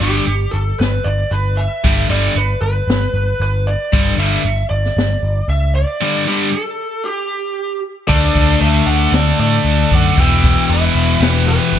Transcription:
0.01 0.18 G1 medium
0.01 0.23 G2 medium
0.01 0.23 D3 loud
0.01 0.24 G3 medium
0.01 0.55 G4 medium
0.27 0.45 G1 medium
0.27 open hi-hat medium
0.51 0.71 G1 medium
0.51 0.79 A4 medium
0.80 0.97 G1 medium
0.80 1.07 B4 medium
0.80 snare medium
0.80 open hi-hat soft
1.04 1.23 G1 medium
1.04 1.32 D5 medium
1.31 1.66 G1 medium
1.31 1.59 B4 medium
1.31 open hi-hat soft
1.57 2.10 E5 medium
1.84 2.01 G1 medium
1.84 2.05 G2 medium
1.84 2.05 D3 medium
1.84 2.06 G3 medium
1.84 kick loud
1.84 open hi-hat soft
2.09 2.27 G1 medium
2.09 2.31 G2 medium
2.09 2.31 D3 medium
2.09 2.32 G3 medium
2.09 2.35 D5 medium
2.36 2.53 G1 medium
2.36 2.61 B4 medium
2.36 open hi-hat medium
2.62 2.79 G1 medium
2.62 3.41 B4 medium
2.88 3.05 G1 medium
2.88 snare loud
2.88 open hi-hat soft
3.14 3.31 G1 medium
3.40 3.74 G1 medium
3.40 3.68 B4 medium
3.40 open hi-hat medium
3.67 4.19 D5 medium
3.93 4.10 G1 medium
3.93 4.14 G2 medium
3.93 4.14 D3 medium
3.93 4.14 G3 loud
3.93 kick loud
3.93 open hi-hat soft
4.18 4.35 G1 medium
4.18 4.39 G2 medium
4.18 4.40 D3 medium
4.18 4.40 G3 medium
4.18 4.69 E5 medium
4.45 4.62 G1 medium
4.45 open hi-hat medium
4.70 4.88 G1 medium
4.70 5.49 D5 medium
4.86 snare soft
4.97 5.14 G1 medium
4.97 snare medium
4.97 open hi-hat soft
5.23 5.40 G1 medium
5.48 5.82 C#2 medium
5.48 5.75 E5 medium
5.48 open hi-hat soft
5.75 6.29 D5 medium
6.02 6.22 G2 medium
6.02 6.23 D3 medium
6.02 6.23 G3 medium
6.27 6.48 G2 medium
6.27 6.48 D3 medium
6.27 6.48 G3 loud
6.27 6.54 G4 medium
6.52 7.06 A4 medium
7.05 7.79 G4 medium
8.08 8.27 D2 medium
8.08 10.15 D3 medium
8.08 10.16 A3 medium
8.08 8.57 A4 medium
8.08 8.62 D5 medium
8.08 kick loud
8.08 crash loud
8.08 crash medium
8.12 10.17 D4 loud
8.35 8.53 D2 medium
8.35 kick medium
8.35 crash medium
8.61 8.79 D2 medium
8.61 8.86 A4 medium
8.61 8.89 E5 medium
8.61 crash medium
8.86 9.05 D2 medium
8.86 9.12 D5 medium
8.86 9.11 F#5 medium
8.86 crash medium
9.12 9.31 D2 loud
9.12 9.38 A4 medium
9.12 9.39 D5 medium
9.12 snare loud
9.12 crash medium
9.39 9.58 A2 medium
9.39 9.89 A4 medium
9.39 9.94 D5 loud
9.39 crash medium
9.65 9.83 D2 medium
9.65 crash medium
9.92 10.10 F#2 medium
9.92 10.17 D5 medium
9.92 10.20 F#5 loud
9.92 kick medium
9.92 crash medium
10.17 10.54 E1 medium
10.17 11.79 E2 medium
10.17 11.79 B2 loud
10.17 11.79 E3 medium
10.17 10.67 E5 medium
10.17 10.73 G5 loud
10.17 kick loud
10.17 crash medium
10.43 kick medium
10.43 crash medium
10.69 10.87 E1 medium
10.69 11.18 B4 medium
10.69 crash medium
10.74 11.25 E5 medium
10.95 11.13 E1 medium
10.95 crash medium
11.20 11.57 E1 loud
11.20 11.46 G4 medium
11.20 11.47 B4 medium
11.20 snare loud
11.20 crash medium
11.48 11.79 G4 medium
11.48 11.79 B4 medium
11.48 crash medium
11.73 11.79 G1 loud
11.73 crash medium

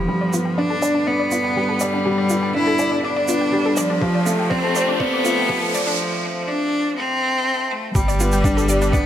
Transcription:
0.00 0.11 E3 medium
0.00 0.60 F3 medium
0.00 0.08 G3 medium
0.00 0.10 B3 medium
0.00 0.11 G4 medium
0.08 3.98 G2 medium
0.08 3.98 D3 medium
0.08 0.32 G3 medium
0.08 3.98 B3 medium
0.08 0.20 G4 medium
0.08 riser medium
0.21 0.29 D5 medium
0.33 0.57 B3 medium
0.33 0.38 F4 loud
0.33 shaker medium
0.45 0.53 G5 medium
0.58 0.81 D4 medium
0.58 1.09 D4 loud
0.58 0.69 D5 medium
0.70 0.82 A4 loud
0.82 0.87 D5 medium
0.82 1.06 D5 medium
0.82 shaker medium
0.94 0.99 D4 loud
1.07 1.82 B3 medium
1.07 1.30 D4 medium
1.07 1.18 D5 medium
1.20 1.27 D5 medium
1.31 1.55 B3 medium
1.31 1.43 F4 loud
1.31 shaker medium
1.44 1.52 G5 medium
1.56 1.80 G3 medium
1.56 1.68 G4 medium
1.69 1.80 A4 loud
1.80 2.55 G3 loud
1.80 1.89 D5 loud
1.80 2.04 D5 medium
1.80 shaker medium
1.94 1.98 D4 medium
2.06 2.29 G3 medium
2.06 2.17 G4 medium
2.18 2.26 D5 loud
2.30 2.53 B3 medium
2.30 2.35 F4 loud
2.30 shaker medium
2.43 2.50 G5 medium
2.54 2.78 D4 medium
2.54 3.02 E4 loud
2.54 2.66 D5 medium
2.67 2.78 A4 loud
2.79 3.02 D5 medium
2.79 2.84 D5 medium
2.79 shaker medium
2.92 2.96 D4 loud
3.03 3.78 D4 loud
3.03 3.27 D4 medium
3.03 3.15 D5 loud
3.16 3.24 D5 loud
3.28 3.51 B3 medium
3.28 3.40 F4 loud
3.28 shaker medium
3.41 3.49 G5 medium
3.52 3.76 G3 medium
3.52 3.65 G4 loud
3.65 3.77 A4 loud
3.77 4.51 F3 loud
3.77 4.00 D5 medium
3.77 3.85 D5 loud
3.77 shaker medium
3.90 3.94 D4 loud
4.01 5.96 F2 medium
4.01 5.96 C3 medium
4.01 4.25 F3 medium
4.01 5.96 A3 medium
4.01 4.14 G4 medium
4.01 kick loud
4.14 4.22 D5 loud
4.26 4.49 A3 medium
4.26 4.31 F4 loud
4.26 shaker medium
4.39 4.47 G5 medium
4.50 4.93 C4 loud
4.50 4.74 C4 loud
4.50 4.63 D5 medium
4.50 kick loud
4.64 4.75 A4 loud
4.75 4.99 C5 loud
4.75 4.81 D5 loud
4.75 shaker medium
4.88 4.93 D4 loud
4.93 5.01 C4 medium
5.00 5.75 B3 medium
5.00 5.23 C4 medium
5.00 5.11 D5 medium
5.00 kick loud
5.12 5.20 D5 loud
5.24 5.48 A3 medium
5.24 5.37 F4 loud
5.24 shaker medium
5.38 5.45 G5 medium
5.49 5.72 F3 medium
5.49 5.61 G4 loud
5.49 kick loud
5.62 5.74 A4 loud
5.74 6.49 F3 loud
5.74 5.97 C5 medium
5.74 5.82 D5 loud
5.74 shaker medium
5.87 5.91 D4 loud
6.48 6.95 D4 loud
6.96 7.73 C4 loud
7.71 7.95 A3 medium
7.95 9.06 G1 medium
7.95 8.18 G3 medium
7.95 8.94 G3 loud
7.95 9.06 B3 medium
7.95 8.07 G4 medium
7.95 9.06 G4 medium
7.95 9.06 D5 loud
7.95 kick loud
7.95 shaker medium
8.08 8.16 D5 loud
8.08 shaker soft
8.20 8.43 B3 medium
8.20 8.25 F4 loud
8.20 shaker medium
8.32 8.40 G5 medium
8.32 shaker soft
8.44 8.68 D4 loud
8.44 8.56 D5 medium
8.44 kick loud
8.44 shaker medium
8.57 8.69 A4 loud
8.57 shaker soft
8.69 8.83 G4 loud
8.69 8.74 D5 loud
8.69 shaker medium
8.82 8.86 D4 loud
8.82 shaker soft
8.93 9.06 B3 loud
8.93 9.06 D4 medium
8.93 9.05 D5 medium
8.93 kick loud
8.93 shaker medium

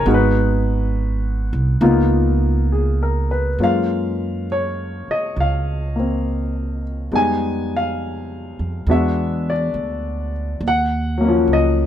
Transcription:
0.06 1.49 G#1 medium
0.06 1.81 G#3 medium
0.06 1.80 B3 soft
0.06 1.80 D#4 medium
0.06 1.82 F#4 medium
0.14 1.53 B4 medium
1.53 1.79 C2 medium
1.81 3.55 C#2 medium
1.81 3.59 A#3 medium
1.81 3.59 B3 medium
1.81 3.60 D#4 medium
1.81 3.59 F4 medium
2.72 3.28 G#4 soft
3.03 3.48 A#4 soft
3.31 3.77 B4 medium
3.59 5.04 F#2 medium
3.59 7.11 G#3 soft
3.59 5.94 A#3 soft
3.59 7.13 C#4 soft
3.59 7.13 F4 soft
3.64 4.46 F5 medium
4.52 5.12 C#5 medium
5.08 5.36 D#5 medium
5.08 muted upright bass stroke soft
5.36 7.08 C#2 medium
5.40 6.82 F5 medium
5.96 7.12 A#3 soft
5.96 7.13 C4 soft
7.12 8.55 F2 medium
7.12 8.88 G3 soft
7.12 8.87 G#3 soft
7.12 8.87 B3 soft
7.12 8.88 D#4 soft
7.12 7.75 G#5 medium
7.77 8.93 F5 medium
8.59 8.85 F2 medium
8.87 9.70 E2 medium
8.87 10.62 G#3 medium
8.87 10.63 B3 medium
8.87 10.63 D4 soft
8.87 10.63 F#4 medium
8.91 9.50 E5 medium
9.50 10.32 D5 medium
9.74 10.58 D2 medium
10.61 11.44 D#2 medium
10.68 11.54 F#5 medium
11.18 11.86 F#3 medium
11.18 11.86 A#3 medium
11.24 11.86 F3 medium
11.24 11.86 C#4 medium
11.48 11.86 C#2 medium
11.53 11.86 D#5 medium

